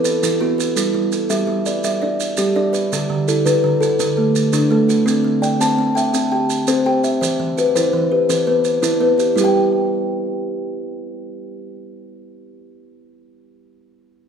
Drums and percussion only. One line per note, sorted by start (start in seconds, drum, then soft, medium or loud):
0.05 maracas medium
0.23 maracas medium
0.60 maracas medium
0.77 maracas medium
1.12 maracas medium
1.30 maracas medium
1.66 maracas medium
1.84 maracas medium
2.20 maracas medium
2.37 maracas medium
2.74 maracas soft
2.93 maracas medium
3.28 maracas medium
3.46 maracas medium
3.82 maracas medium
4.00 maracas medium
4.36 maracas medium
4.53 maracas medium
4.90 maracas medium
5.08 maracas medium
5.43 maracas medium
5.61 maracas medium
5.97 maracas medium
6.14 maracas medium
6.50 maracas medium
6.67 maracas medium
7.04 maracas soft
7.23 maracas medium
7.58 maracas medium
7.76 maracas medium
8.30 maracas medium
8.64 maracas soft
8.83 maracas medium
9.20 maracas medium
9.38 maracas medium